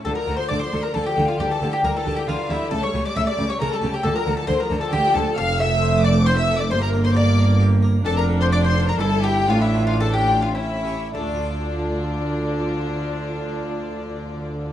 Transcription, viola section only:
\new Staff \with { instrumentName = "Viola section" } { \clef bass \time 3/4 \key d \minor \tempo 4 = 134 a16 f16 a16 f16 a16 f16 a16 f16 a16 f16 a16 f16 | g16 e16 g16 e16 g16 e16 g16 e16 g16 e16 g16 e16 | a16 g16 a16 g16 a16 g16 a16 g16 a16 g16 a16 g16 | a16 f16 a16 f16 a16 f16 a16 f16 a16 f16 a16 f16 |
a2. | bes2. | d'2 e'4 | d'2 cis'8 r8 |
f'2.~ | f'2. | }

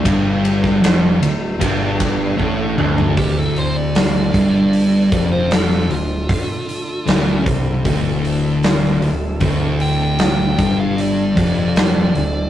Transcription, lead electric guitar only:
\new Staff \with { instrumentName = "Lead electric guitar" } { \time 4/4 \key d \minor \tempo 4 = 77 r1 | g'16 a'16 c''16 d''2 c''16 a'8 f'8~ | f'4. r2 r8 | r8 g''16 g''4 f''16 d''2 | }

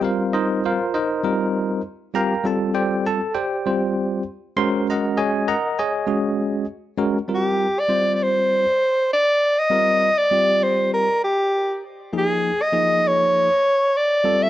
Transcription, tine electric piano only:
\new Staff \with { instrumentName = "Tine electric piano" } { \time 4/4 \key ees \lydian \tempo 4 = 99 << { <c'' f''>8 <ees' bes' c'' ees''>8 <f' bes' c'' f''>8 <ees' bes' c'' ees''>4. r8 <bes' f'' g'' bes''>8 | a''8 <g' c'' d'' g''>8 <a' a''>8 <g' c'' d'' g''>4. r8 <c'' c'''>8 | <bes' ees'' ges'' bes''>8 <aes' des'' ees'' aes''>8 <bes' ees'' ges'' bes''>8 <aes' des'' ees'' aes''>4. r4 | r1 |
r1 | r1 | } \\ { <g c' f' bes'>4~ <g c' f' bes'>16 r8. <g c' f' bes'>4 r8 <g c' f' g'>8 | <g c' f' a'>4~ <g c' f' a'>16 r8. <g c' f' c''>4 r8 <aes des' ges' bes'>8~ | <aes des' ges' bes'>4 r4 <aes des' ges' aes'>4 r8 <aes des' ges' bes'>8 | <g c' f' bes'>8 r8 <g c' f' c''>4~ <g c' f' c''>16 r4. r16 |
<g c' f' bes'>8 r8 <g c' f' g'>4~ <g c' f' g'>16 r4. r16 | <f bes ees' aes'>8 r8 <f bes ees' aes'>4~ <f bes ees' aes'>16 r4 r16 <g c' f' a'>8 | } >> }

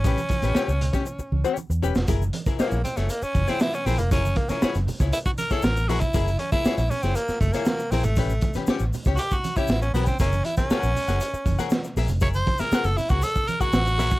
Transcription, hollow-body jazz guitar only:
\new Staff \with { instrumentName = "Hollow-body jazz guitar" } { \time 4/4 \key fis \mixolydian \tempo 4 = 118 <cis' g' b'>16 r8 <cis' g' b'>16 <cis' g' cis''>16 r8 <cis' g' cis''>16 r8. <cis' g' cis''>8 r16 <cis' g' b'>16 r16 | <e' gis' ais'>16 r8 <e' gis' ais'>16 <e' gis' cis''>8 r16 <e' gis' cis''>16 r8. <e' gis' cis''>16 r8 <e' gis' ais'>16 r16 | <e' gis' ais'>16 r8 <e' gis' ais'>16 <e' gis' cis''>16 r8 <e' gis' cis''>16 r8. <e' gis' cis''>16 r8 <e' gis' ais'>16 r16 | <e' gis' ais'>16 r8 <e' gis' ais'>16 <e' gis' cis''>16 r8 <e' gis' cis''>16 r8. <e' gis' cis''>16 r8 <e' gis' ais'>16 r16 |
<cis' g' b'>16 r8 <cis' g' b'>16 <cis' g' cis''>16 r8 <cis' g' cis''>16 r8. <cis' g' cis''>16 r8 <cis' g' b'>8 | <gis' ais' e''>16 r8 <gis' ais' e''>16 <gis' ais' fis''>8 r16 <gis' ais' fis''>16 r8. <gis' ais' fis''>16 r8 <gis' ais' e''>16 r16 | <gis' ais' e''>16 r8 <gis' ais' e''>16 <gis' ais' fis''>16 r8 <gis' ais' fis''>16 r8. <gis' ais' fis''>16 r8 <gis' ais' e''>16 r16 | }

